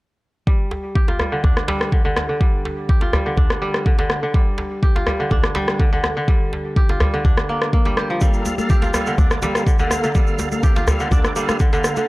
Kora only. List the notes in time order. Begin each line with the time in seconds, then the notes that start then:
0.47 G3
0.95 G4
1.08 F4
1.19 G3
1.32 D3
1.44 D4
1.68 G3
1.92 D3
2.05 D3
2.29 D3
2.41 G3
2.89 G4
3.02 F4
3.13 G3
3.26 D3
3.38 D4
3.62 G3
3.86 D3
3.99 D3
4.23 D3
4.35 G3
4.83 G4
4.96 F4
5.07 G3
5.20 D3
5.31 D4
5.56 G3
5.80 D3
5.93 D3
6.17 D3
6.28 G3
6.77 G4
6.90 F4
7.01 G3
7.14 D3
7.25 D4
7.49 A#3
7.73 A#3
7.86 G3
7.97 G4
8.10 F3
8.22 G3
8.70 G4
8.83 F4
8.94 G3
9.07 D3
9.19 D4
9.43 G3
9.67 D3
9.79 D3
10.04 D3
10.15 G3
10.64 G4
10.76 F4
10.88 G3
11.00 D3
11.12 D4
11.36 G3
11.60 D3
11.73 D3
11.97 D3